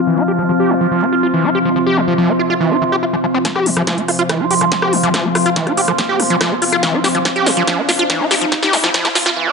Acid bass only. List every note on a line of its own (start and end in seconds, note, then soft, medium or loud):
0.07 0.19 E3 medium
0.18 0.23 F4 medium
0.28 0.32 G4 medium
0.39 0.43 F3 medium
0.49 0.52 F3 medium
0.60 0.72 G4 loud
0.70 0.74 F3 medium
0.81 0.87 F3 loud
0.91 1.04 F3 medium
1.02 1.06 C4 loud
1.13 1.15 F4 medium
1.23 1.27 F4 loud
1.34 1.46 E3 medium
1.44 1.50 F4 medium
1.55 1.59 G4 medium
1.65 1.69 F3 medium
1.76 1.78 F3 medium
1.87 1.99 G4 loud
1.97 2.01 F3 medium
2.08 2.14 F3 loud
2.18 2.30 F3 loud
2.29 2.33 C4 loud
2.39 2.42 F4 medium
2.50 2.54 F4 loud
2.60 2.73 E3 medium
2.71 2.77 F4 medium
2.82 2.84 E3 medium
2.92 2.96 G4 loud
3.03 3.05 F4 medium
3.13 3.16 F3 medium
3.24 3.26 F3 medium
3.34 3.38 C4 loud
3.45 3.47 F3 medium
3.56 3.68 G4 loud
3.66 3.70 F3 medium
3.77 3.83 F3 loud
3.87 3.99 F3 loud
3.98 4.02 C4 loud
4.08 4.11 F4 medium
4.19 4.23 F4 loud
4.29 4.42 E3 medium
4.40 4.46 F4 medium
4.51 4.55 G4 medium
4.61 4.65 F3 medium
4.72 4.74 F3 medium
4.82 4.94 G4 loud
4.93 4.97 F3 medium
5.03 5.09 F3 medium
5.14 5.26 F3 loud
5.25 5.29 C4 loud
5.35 5.37 F4 medium
5.46 5.50 F4 loud
5.56 5.68 E3 medium
5.67 5.73 F4 medium
5.77 5.81 G4 medium
5.88 5.92 F3 medium
5.99 6.01 F3 medium
6.09 6.21 G4 loud
6.20 6.24 F3 medium
6.30 6.36 F3 loud
6.41 6.53 F3 loud
6.51 6.55 C4 loud
6.62 6.64 F4 medium
6.72 6.76 F4 loud
6.83 6.95 E3 medium
6.94 7.00 F4 medium
7.04 7.08 G4 medium
7.15 7.19 F3 medium
7.25 7.28 F3 medium
7.36 7.48 G4 loud
7.46 7.50 F3 medium
7.57 7.63 F3 loud
7.67 7.80 F3 loud
7.78 7.82 C4 loud
7.89 7.91 F4 medium
7.99 8.03 F4 loud
8.10 8.22 E3 medium
8.20 8.26 F4 medium
8.31 8.35 G4 medium
8.41 8.45 F3 medium
8.52 8.54 F3 medium
8.63 8.75 G4 loud
8.73 8.77 F3 medium
8.84 8.90 F3 loud
8.94 9.06 F3 loud
9.05 9.09 C4 loud
9.15 9.18 F4 medium
9.26 9.30 F4 loud
9.37 9.49 E3 medium
9.47 9.52 F4 medium